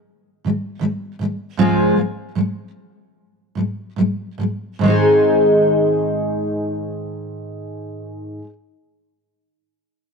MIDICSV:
0, 0, Header, 1, 2, 480
1, 0, Start_track
1, 0, Key_signature, -4, "major"
1, 0, Tempo, 761421
1, 997, Time_signature, 4, 2, 24, 8
1, 1488, Tempo, 808625
1, 2448, Tempo, 860832
1, 5879, End_track
2, 0, Start_track
2, 0, Title_t, "Steel-string acoustic guitar"
2, 0, Program_c, 0, 25
2, 280, Note_on_c, 0, 44, 39
2, 288, Note_on_c, 0, 51, 48
2, 297, Note_on_c, 0, 56, 52
2, 470, Note_off_c, 0, 44, 0
2, 473, Note_off_c, 0, 51, 0
2, 478, Note_off_c, 0, 56, 0
2, 500, Note_on_c, 0, 44, 51
2, 510, Note_on_c, 0, 51, 60
2, 520, Note_on_c, 0, 56, 54
2, 700, Note_off_c, 0, 44, 0
2, 705, Note_off_c, 0, 51, 0
2, 710, Note_off_c, 0, 56, 0
2, 751, Note_on_c, 0, 44, 46
2, 764, Note_on_c, 0, 51, 49
2, 773, Note_on_c, 0, 56, 51
2, 946, Note_off_c, 0, 44, 0
2, 953, Note_off_c, 0, 51, 0
2, 957, Note_off_c, 0, 56, 0
2, 992, Note_on_c, 0, 44, 61
2, 1000, Note_on_c, 0, 53, 69
2, 1001, Note_on_c, 0, 60, 72
2, 1002, Note_on_c, 0, 56, 77
2, 1002, Note_on_c, 0, 65, 65
2, 1008, Note_on_c, 0, 68, 78
2, 1229, Note_off_c, 0, 44, 0
2, 1236, Note_off_c, 0, 53, 0
2, 1237, Note_on_c, 0, 44, 40
2, 1243, Note_off_c, 0, 60, 0
2, 1243, Note_on_c, 0, 53, 46
2, 1244, Note_off_c, 0, 56, 0
2, 1244, Note_off_c, 0, 65, 0
2, 1246, Note_off_c, 0, 68, 0
2, 1252, Note_on_c, 0, 56, 47
2, 1436, Note_off_c, 0, 44, 0
2, 1439, Note_off_c, 0, 53, 0
2, 1444, Note_off_c, 0, 56, 0
2, 1483, Note_on_c, 0, 44, 54
2, 1489, Note_on_c, 0, 53, 61
2, 1500, Note_on_c, 0, 56, 57
2, 1673, Note_off_c, 0, 44, 0
2, 1676, Note_off_c, 0, 53, 0
2, 1682, Note_off_c, 0, 56, 0
2, 2195, Note_on_c, 0, 44, 40
2, 2206, Note_on_c, 0, 53, 41
2, 2215, Note_on_c, 0, 56, 41
2, 2395, Note_off_c, 0, 44, 0
2, 2401, Note_off_c, 0, 53, 0
2, 2405, Note_off_c, 0, 56, 0
2, 2439, Note_on_c, 0, 44, 47
2, 2450, Note_on_c, 0, 53, 44
2, 2455, Note_on_c, 0, 56, 56
2, 2631, Note_off_c, 0, 44, 0
2, 2636, Note_off_c, 0, 53, 0
2, 2639, Note_off_c, 0, 56, 0
2, 2672, Note_on_c, 0, 44, 45
2, 2681, Note_on_c, 0, 53, 45
2, 2690, Note_on_c, 0, 56, 47
2, 2867, Note_off_c, 0, 44, 0
2, 2872, Note_off_c, 0, 53, 0
2, 2876, Note_off_c, 0, 56, 0
2, 2901, Note_on_c, 0, 44, 61
2, 2915, Note_on_c, 0, 51, 59
2, 2926, Note_on_c, 0, 56, 63
2, 2941, Note_on_c, 0, 60, 58
2, 2950, Note_on_c, 0, 63, 74
2, 2961, Note_on_c, 0, 68, 61
2, 4908, Note_off_c, 0, 44, 0
2, 4922, Note_off_c, 0, 51, 0
2, 4933, Note_off_c, 0, 56, 0
2, 4947, Note_off_c, 0, 60, 0
2, 4957, Note_off_c, 0, 63, 0
2, 4968, Note_off_c, 0, 68, 0
2, 5879, End_track
0, 0, End_of_file